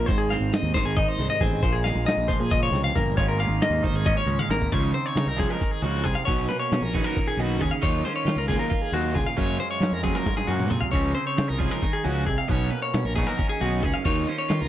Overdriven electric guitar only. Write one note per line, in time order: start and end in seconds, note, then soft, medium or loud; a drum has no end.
4.72 4.94 C#3 medium
4.72 4.94 F3 medium
4.72 4.94 G#3 medium
4.72 4.93 C#4 medium
4.94 muted overdriven electric guitar stroke medium
5.17 muted overdriven electric guitar stroke soft
5.39 5.61 C#3 medium
5.39 5.60 F3 medium
5.39 5.61 G#3 medium
5.39 5.60 C#4 medium
5.62 muted overdriven electric guitar stroke soft
5.84 6.06 C#3 medium
5.84 6.06 F3 medium
5.84 6.05 G#3 medium
5.84 6.05 C#4 medium
6.08 muted overdriven electric guitar stroke soft
6.28 6.49 B2 medium
6.28 6.50 F#3 medium
6.28 6.50 B3 medium
6.28 6.49 D#4 medium
6.51 muted overdriven electric guitar stroke soft
6.73 muted overdriven electric guitar stroke soft
6.96 7.17 B2 medium
6.96 7.17 F#3 medium
6.96 7.17 B3 medium
6.96 7.17 D#4 medium
7.18 muted overdriven electric guitar stroke soft
7.40 7.62 B2 medium
7.40 7.61 F#3 medium
7.40 7.62 B3 medium
7.40 7.61 D#4 medium
7.62 muted overdriven electric guitar stroke soft
7.84 8.05 D#3 medium
7.84 8.06 F#3 medium
7.84 8.05 A#3 medium
7.84 8.05 D#4 medium
8.06 muted overdriven electric guitar stroke medium
8.28 muted overdriven electric guitar stroke soft
8.50 8.72 D#3 medium
8.50 8.72 F#3 medium
8.50 8.72 A#3 medium
8.50 8.72 D#4 medium
8.73 muted overdriven electric guitar stroke soft
8.94 9.15 D#3 medium
8.94 9.15 F#3 medium
8.94 9.15 A#3 medium
8.94 9.15 D#4 medium
9.16 muted overdriven electric guitar stroke soft
9.37 9.60 C#3 medium
9.37 9.60 F#3 medium
9.37 9.59 A#3 medium
9.37 9.59 C#4 medium
9.60 muted overdriven electric guitar stroke soft
9.82 muted overdriven electric guitar stroke soft
10.03 10.24 C#3 medium
10.03 10.25 F#3 medium
10.03 10.25 A#3 medium
10.03 10.25 C#4 medium
10.25 muted overdriven electric guitar stroke soft
10.48 10.70 C#3 medium
10.48 10.70 F#3 medium
10.48 10.71 A#3 medium
10.48 10.71 C#4 medium
10.71 muted overdriven electric guitar stroke soft
10.93 11.16 C#3 medium
10.93 11.14 F3 medium
10.93 11.14 G#3 medium
10.93 11.14 C#4 medium
11.15 muted overdriven electric guitar stroke soft
11.38 muted overdriven electric guitar stroke soft
11.60 11.83 C#3 medium
11.60 11.83 F3 medium
11.60 11.83 G#3 medium
11.60 11.83 C#4 medium
11.84 muted overdriven electric guitar stroke soft
12.05 12.27 C#3 medium
12.05 12.28 F3 medium
12.05 12.28 G#3 medium
12.05 12.27 C#4 medium
12.28 muted overdriven electric guitar stroke soft
12.49 12.71 B2 medium
12.49 12.71 F#3 medium
12.49 12.71 B3 medium
12.49 12.71 D#4 medium
12.72 muted overdriven electric guitar stroke soft
12.94 muted overdriven electric guitar stroke soft
13.17 13.39 B2 medium
13.17 13.39 F#3 medium
13.17 13.39 B3 medium
13.17 13.39 D#4 medium
13.40 muted overdriven electric guitar stroke soft
13.61 13.82 B2 medium
13.61 13.83 F#3 medium
13.61 13.83 B3 medium
13.61 13.83 D#4 medium
13.83 muted overdriven electric guitar stroke soft
14.06 14.27 D#3 medium
14.06 14.28 F#3 medium
14.06 14.28 A#3 medium
14.06 14.28 D#4 medium
14.30 muted overdriven electric guitar stroke medium
14.51 muted overdriven electric guitar stroke soft